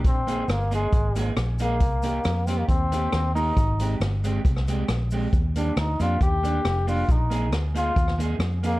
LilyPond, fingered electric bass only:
\new Staff \with { instrumentName = "Fingered electric bass" } { \clef bass \time 4/4 \key bes \mixolydian \tempo 4 = 136 bes,,4 g,,4 aes,,4 bes,,4 | c,4 f,4 ees,4 ees,4 | aes,,4 g,,4 c,4 bes,,4 | ees,4 d,8 f,8 ees,4 f,,4 |
bes,,4 d,4 ees,4 f,4 | }